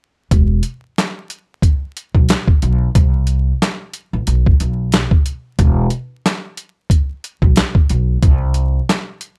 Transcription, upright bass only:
0.32 0.59 E1 loud
2.15 2.27 B1 medium
2.63 2.90 B1 medium
2.95 3.51 C2 loud
4.13 4.25 A1 medium
4.27 4.55 B1 loud
4.60 5.04 B1 medium
5.59 5.87 E1 loud
7.42 7.54 B1 medium
7.90 8.18 B1 medium
8.23 8.78 C2 loud

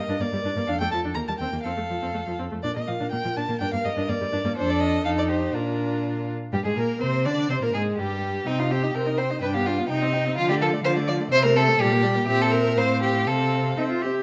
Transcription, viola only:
0.09 0.14 D4 medium
0.21 0.26 A#3 soft
0.33 0.38 G3 soft
0.45 0.50 D4 soft
0.57 0.61 A#3 soft
0.68 0.73 D4 medium
0.81 0.85 A3 soft
0.93 0.97 F3 soft
1.05 1.09 D4 soft
1.16 1.21 A#3 soft
1.29 1.33 G3 soft
1.41 1.46 C4 soft
1.53 1.58 A#3 soft
1.65 1.70 C4 soft
1.77 1.82 A3 soft
1.90 1.95 F3 soft
2.02 2.07 C4 soft
2.14 2.19 A3 soft
2.27 2.32 F3 soft
2.39 2.44 C4 soft
2.52 2.56 A3 soft
2.64 2.69 D4 soft
2.76 2.81 A#3 soft
2.87 2.92 F3 soft
3.00 3.05 D4 soft
3.12 3.17 A#3 soft
3.24 3.29 F3 soft
3.37 3.41 D4 soft
3.49 3.53 A#3 soft
3.61 3.65 D4 soft
3.73 3.78 A#3 soft
3.85 3.90 G3 soft
3.97 4.01 D4 soft
4.09 4.14 A#3 soft
4.21 4.26 G3 soft
4.32 4.37 D4 medium
4.45 4.49 A#3 medium
4.57 5.01 D4 medium
5.05 5.55 D#4 medium
5.54 6.32 D4 soft
6.53 6.58 G3 medium
6.65 6.76 G#3 soft
6.77 7.00 A#3 medium
7.01 7.27 C4 medium
7.26 7.50 D4 soft
7.50 7.55 C4 medium
7.63 7.67 A#3 soft
7.75 8.00 G#3 medium
7.99 8.46 G3 medium
8.47 8.61 C4 soft
8.59 8.73 D#4 soft
8.71 8.85 C4 soft
8.83 8.94 D#4 soft
8.95 9.08 C4 soft
9.07 9.20 D#4 soft
9.18 9.32 C4 soft
9.31 9.42 D#4 soft
9.43 9.57 D4 soft
9.55 9.69 B3 soft
9.67 9.81 D4 soft
9.79 9.90 B3 soft
9.90 10.04 D#4 soft
10.02 10.16 C4 soft
10.14 10.28 D#4 soft
10.27 10.38 C4 soft
10.39 10.52 F3 medium
10.50 10.63 A3 soft
10.62 10.75 F3 medium
10.73 10.84 A3 soft
10.84 10.98 F3 soft
10.97 11.10 A3 soft
11.08 11.22 F3 medium
11.20 11.32 A3 soft
11.33 11.46 C4 medium
11.44 11.57 A3 medium
11.56 11.69 C4 medium
11.68 11.79 A3 soft
11.80 11.93 G3 medium
11.92 12.05 A#3 medium
12.04 12.17 G3 medium
12.16 12.27 A#3 medium
12.28 12.73 C4 medium
12.77 13.26 C4 medium
13.27 13.76 C4 medium
13.77 14.06 C4 soft

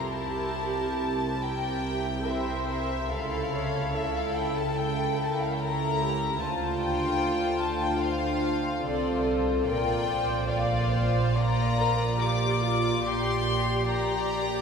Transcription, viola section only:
0.00 1.41 G4 medium
1.42 2.27 G4 medium
2.28 3.12 C5 medium
3.13 3.53 A4 medium
3.54 3.95 C#5 medium
3.94 4.76 A4 medium
4.77 5.18 A4 medium
5.19 5.61 A#4 medium
5.59 6.01 A4 medium
6.01 6.41 G4 medium
6.41 8.80 F4 medium
8.84 9.66 A4 medium
9.66 10.08 A#4 medium
10.08 10.49 C5 medium
10.49 10.93 D5 medium
10.93 11.37 C5 medium
11.38 11.81 D5 medium
11.80 12.21 A#4 medium
12.22 12.63 G4 medium
12.63 13.05 F4 medium
13.05 14.62 G4 medium

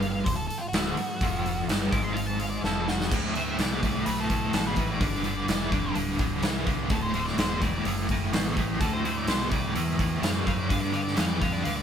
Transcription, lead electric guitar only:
0.00 0.11 F5 medium
0.12 0.24 F5 loud
0.24 0.36 C5 loud
0.36 0.46 A4 medium
0.48 0.60 A4 medium
0.58 0.68 F4 medium
0.68 1.63 F#4 loud
1.91 2.03 D6 medium
2.04 2.15 C6 medium
2.13 2.26 F5 loud
2.26 2.38 A5 medium
2.39 2.49 F5 medium
2.50 2.62 D5 medium
2.64 2.87 A4 medium
2.89 3.11 F#4 loud
3.34 3.57 E5 medium
3.60 4.05 D5 medium
4.06 4.20 B4 medium
4.20 4.65 A4 medium
4.67 4.89 B4 medium
4.91 5.01 D5 medium
5.04 5.94 D5 loud
6.92 7.02 A4 loud
7.02 7.25 C5 medium
7.26 7.38 D5 medium
7.38 7.61 C5 medium
7.61 7.84 D5 medium
8.81 8.93 A4 medium
8.93 9.16 C5 medium
9.17 9.28 D5 medium
9.28 9.50 C5 medium
9.50 9.74 D5 medium
10.23 10.34 F5 medium
10.34 10.45 D5 medium
10.45 10.57 F5 medium
10.58 10.72 D5 medium
10.72 10.81 F5 medium
10.81 10.93 D5 medium
10.94 11.03 F5 medium
11.03 11.16 D5 medium
11.18 11.27 F5 medium
11.28 11.42 D5 medium
11.42 11.53 F5 medium
11.53 11.64 D5 medium
11.64 11.76 F5 medium
11.76 11.82 D5 medium

